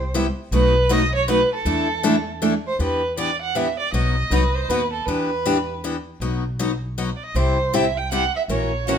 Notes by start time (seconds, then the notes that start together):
Already playing: C2 C5
0.14 C3 G3 B3 E4 G4
0.51 B1 B2 F#3 A3 D#4 F#4 B4
0.89 B2 F#3 A3 D#4 F#4 B4 D#5
1.15 C#5
1.28 B2 F#3 A3 D#4 F#4 B4
1.54 A4
1.65 E2 E3 A3 D4 E4 A4
2.03 E3 A3 D4 E4 A4
2.42 E3 A3 D4 E4 A4
2.67 C5
2.79 E2 E3 B3 D4 G4 B4
3.17 E3 B3 D4 G4 D5
3.41 F#5
3.55 E3 B3 D4 G4 E5
3.79 D5
3.92 B1 B2 F#3 B3 D#4 F#4 D#5
4.30 C2 B2 F#3 B3 D#4 F#4 B4
4.55 C5
4.69 D#2 B2 F#3 B3 D#4 F#4 B4
4.93 A4
5.06 E2 E3 B3 D4 G4 B4
5.45 E3 B3 D4 G4
5.84 E3 B3 D4 G4
6.20 B1 B2 F#3 B3 D#4 F#4
6.59 B2 F#3 B3 D#4 F#4
6.98 B2 F#3 B3 D#4 F#4
7.16 D5
7.23 D#5
7.35 C2 C3 G3 C4 E4 G4 C5
7.74 C3 G3 C4 E4 G4 E5
7.98 G5
8.12 C3 G3 C4 E4 G4 F#5
8.36 E5
8.48 A#1 E3 A#3 C#4 F#4 A#4 C#5
8.87 E3 A#3 C#4 F#4 A#4